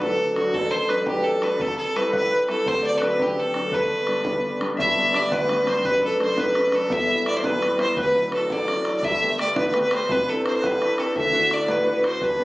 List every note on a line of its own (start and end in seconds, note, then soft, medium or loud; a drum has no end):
0.00 0.50 D1 medium
0.00 0.50 D2 medium
0.00 0.35 F#3 soft
0.00 0.35 A3 soft
0.00 0.36 D4 medium
0.00 1.05 G4 medium
0.00 0.54 A4 medium
0.00 0.33 A4 medium
0.00 0.77 B4 medium
0.00 1.32 D5 medium
0.00 bodhran medium
0.19 bodhran soft
0.36 0.70 F#3 medium
0.36 0.71 A3 soft
0.36 0.71 D4 medium
0.36 0.55 F#4 medium
0.36 bodhran medium
0.54 1.57 A1 medium
0.54 0.72 A4 loud
0.54 1.22 A4 medium
0.54 bodhran medium
0.71 0.94 C5 medium
0.71 0.91 C5 medium
0.88 1.05 F#3 soft
0.88 1.06 A3 soft
0.88 1.06 D4 medium
0.88 2.12 B4 medium
0.88 1.07 B4 medium
0.88 bodhran medium
1.06 1.41 F#3 soft
1.06 1.41 A3 soft
1.06 1.41 D4 soft
1.06 3.19 G4 medium
1.06 1.25 G4 medium
1.06 bodhran medium
1.22 1.59 A4 medium
1.22 1.45 A4 medium
1.22 bodhran soft
1.42 1.59 F#3 soft
1.42 1.60 A3 soft
1.42 1.60 D4 medium
1.42 1.63 B4 medium
1.42 bodhran medium
1.60 2.63 C2 medium
1.60 1.78 A4 medium
1.60 1.77 A4 loud
1.60 bodhran medium
1.78 1.97 A4 medium
1.78 2.48 A4 medium
1.96 2.11 G3 soft
1.96 2.11 C4 soft
1.96 2.12 E4 medium
1.96 2.13 B4 medium
1.96 bodhran medium
2.12 2.47 G3 soft
2.12 2.47 C4 soft
2.12 2.47 E4 soft
2.12 2.30 B4 medium
2.12 2.47 B4 medium
2.12 bodhran medium
2.31 2.73 B4 medium
2.31 bodhran soft
2.48 2.65 G3 soft
2.48 2.66 C4 soft
2.48 2.66 E4 medium
2.48 3.36 A4 medium
2.48 2.69 A4 medium
2.48 bodhran medium
2.66 3.68 D1 medium
2.66 3.69 D2 medium
2.66 2.96 C5 medium
2.66 2.85 C5 loud
2.66 bodhran medium
2.82 4.67 D5 medium
2.87 2.99 D5 medium
2.96 3.06 A4 medium
2.96 3.72 B4 medium
2.96 3.06 C5 medium
3.02 3.18 F#3 soft
3.02 3.19 C4 soft
3.02 3.19 D4 medium
3.02 3.23 B4 medium
3.02 bodhran medium
3.19 3.54 F#3 soft
3.19 3.54 C4 soft
3.19 3.54 D4 medium
3.19 5.54 G4 medium
3.19 3.41 G4 medium
3.19 bodhran medium
3.37 5.56 A4 medium
3.37 3.76 A4 medium
3.37 bodhran soft
3.54 3.72 F#3 medium
3.54 3.72 C4 soft
3.54 3.72 D4 medium
3.54 bodhran medium
3.72 4.74 G1 medium
3.72 4.75 G2 medium
3.72 5.31 B4 medium
3.72 4.62 B4 medium
3.72 bodhran medium
4.07 4.23 G3 soft
4.07 4.24 B3 soft
4.07 4.24 D4 medium
4.07 bodhran medium
4.25 4.59 G3 soft
4.25 4.59 B3 soft
4.25 4.59 D4 medium
4.25 bodhran medium
4.60 4.77 G3 soft
4.60 4.78 B3 soft
4.60 4.78 D4 medium
4.60 bodhran medium
4.77 5.80 G1 medium
4.77 5.13 G2 medium
4.77 6.49 E5 medium
4.77 5.17 E5 loud
4.77 bodhran medium
4.96 5.12 G3 medium
4.96 5.12 B3 soft
4.96 5.13 D4 medium
4.96 bodhran soft
5.12 5.42 G3 medium
5.12 5.42 B3 soft
5.12 5.42 D4 medium
5.12 6.96 D5 medium
5.12 bodhran medium
5.16 5.35 D5 loud
5.31 5.66 D2 medium
5.31 5.73 B4 medium
5.31 5.70 B4 loud
5.31 bodhran medium
5.48 5.64 G3 soft
5.48 5.64 B3 soft
5.48 5.65 D4 medium
5.48 bodhran medium
5.66 5.80 G3 medium
5.66 5.80 B3 soft
5.66 5.81 D4 medium
5.66 5.91 C5 medium
5.66 5.87 C5 loud
5.66 bodhran medium
5.84 6.87 F#1 medium
5.84 6.19 F#2 medium
5.84 6.27 B4 medium
5.84 6.03 B4 loud
5.84 bodhran medium
6.01 6.17 F#3 medium
6.01 6.18 A3 soft
6.01 6.18 D4 medium
6.01 6.72 A4 medium
6.01 bodhran soft
6.05 6.20 A4 medium
6.18 6.47 F#3 soft
6.18 6.48 A3 soft
6.18 6.48 D4 medium
6.18 6.44 C5 medium
6.18 bodhran medium
6.23 6.41 C5 medium
6.37 6.72 F#2 medium
6.37 7.43 B4 medium
6.37 6.77 B4 medium
6.37 bodhran medium
6.55 6.70 F#3 medium
6.55 6.71 A3 soft
6.55 6.71 D4 medium
6.55 bodhran medium
6.71 6.86 F#3 medium
6.71 6.87 A3 soft
6.71 6.87 D4 medium
6.71 8.33 A4 medium
6.71 6.94 A4 loud
6.71 bodhran medium
6.89 7.93 E1 medium
6.89 7.24 E2 medium
6.89 8.63 E5 medium
6.89 7.27 E5 loud
6.89 bodhran medium
7.07 7.23 G3 medium
7.07 7.23 B3 soft
7.07 7.24 E4 medium
7.07 bodhran soft
7.24 7.53 G3 soft
7.24 7.54 B3 soft
7.24 7.54 E4 medium
7.24 8.50 D5 medium
7.24 7.39 D5 medium
7.24 bodhran medium
7.37 7.50 C5 medium
7.37 7.47 C5 medium
7.43 7.78 B1 medium
7.43 7.86 B4 medium
7.43 7.80 B4 loud
7.43 bodhran loud
7.60 7.76 G3 soft
7.60 7.76 B3 soft
7.60 7.77 E4 medium
7.60 bodhran medium
7.78 7.93 G3 medium
7.78 7.93 B3 soft
7.78 7.93 E4 medium
7.78 8.04 C5 medium
7.78 7.97 C5 medium
7.78 bodhran medium
7.96 8.99 D1 medium
7.96 8.31 D2 medium
7.96 9.56 B4 medium
7.96 8.31 B4 loud
7.96 bodhran medium
8.14 8.30 F#3 soft
8.14 8.31 D4 soft
8.14 8.31 E4 medium
8.14 bodhran soft
8.32 8.60 F#3 soft
8.32 8.61 D4 soft
8.32 8.61 E4 medium
8.32 10.27 A4 medium
8.32 8.54 A4 medium
8.32 bodhran medium
8.50 8.85 A1 medium
8.50 9.39 D5 medium
8.50 8.96 D5 loud
8.50 bodhran medium
8.68 8.85 F#3 soft
8.68 8.85 D4 soft
8.68 8.85 E4 medium
8.68 bodhran medium
8.85 9.00 F#3 soft
8.85 9.00 D4 soft
8.85 9.01 E4 medium
8.85 bodhran medium
8.97 9.06 D5 medium
9.03 10.06 G1 medium
9.03 9.38 G2 medium
9.03 10.76 E5 medium
9.03 9.39 E5 loud
9.03 bodhran medium
9.21 9.37 A3 soft
9.21 9.38 B3 soft
9.21 9.39 G4 medium
9.21 bodhran soft
9.39 9.67 A3 soft
9.39 9.68 B3 soft
9.39 9.68 G4 medium
9.39 11.24 D5 medium
9.39 9.56 D5 loud
9.39 bodhran medium
9.56 9.91 D2 medium
9.56 9.80 B4 medium
9.56 9.68 B4 medium
9.56 bodhran loud
9.69 9.80 B4 medium
9.74 9.90 A3 soft
9.74 9.91 B3 soft
9.74 9.91 G4 medium
9.74 bodhran medium
9.81 9.99 B4 medium
9.81 9.92 B4 loud
9.91 10.06 A3 soft
9.91 10.06 B3 soft
9.91 10.07 G4 medium
9.91 10.17 C5 medium
9.91 10.13 C5 medium
9.91 bodhran medium
10.09 11.13 C2 medium
10.09 10.45 C3 medium
10.09 10.50 B4 medium
10.09 10.31 B4 loud
10.09 bodhran loud
10.28 10.44 C4 medium
10.28 10.45 D4 soft
10.28 10.46 E4 medium
10.28 10.98 A4 medium
10.28 10.46 A4 medium
10.28 bodhran soft
10.44 10.74 C4 soft
10.44 10.74 D4 soft
10.44 10.75 E4 medium
10.44 10.50 C5 medium
10.44 10.56 C5 medium
10.44 bodhran medium
10.56 10.67 C5 medium
10.56 10.68 C5 medium
10.61 10.98 G2 medium
10.61 11.69 B4 medium
10.61 bodhran loud
10.66 11.01 B4 medium
10.81 10.97 C4 medium
10.81 10.98 D4 soft
10.81 10.98 E4 medium
10.81 bodhran medium
10.98 11.13 C4 soft
10.98 11.13 D4 soft
10.98 11.13 E4 medium
10.98 12.44 A4 medium
10.98 11.16 A4 medium
10.98 bodhran medium
11.15 12.18 D2 medium
11.15 11.50 D3 medium
11.15 12.44 E5 medium
11.15 11.55 E5 loud
11.15 bodhran medium
11.33 11.49 D4 medium
11.33 11.49 E4 medium
11.33 11.49 F#4 medium
11.33 bodhran soft
11.50 11.79 D4 soft
11.50 11.79 E4 soft
11.50 11.79 F#4 medium
11.50 12.44 D5 medium
11.50 11.73 D5 loud
11.50 bodhran medium
11.68 12.03 A2 medium
11.68 11.86 B4 medium
11.68 12.05 B4 medium
11.68 bodhran medium
11.85 12.01 D4 medium
11.85 12.01 E4 soft
11.85 12.02 F#4 medium
11.85 12.10 B4 medium
12.02 12.17 D4 medium
12.02 12.18 E4 soft
12.02 12.18 F#4 medium
12.02 12.10 C5 medium
12.02 12.25 C5 medium
12.02 bodhran medium
12.21 12.44 G1 medium
12.21 12.44 G2 medium
12.21 12.44 B4 medium
12.21 bodhran medium
12.38 12.44 B3 medium
12.38 12.44 D4 soft
12.38 12.44 G4 medium
12.38 bodhran soft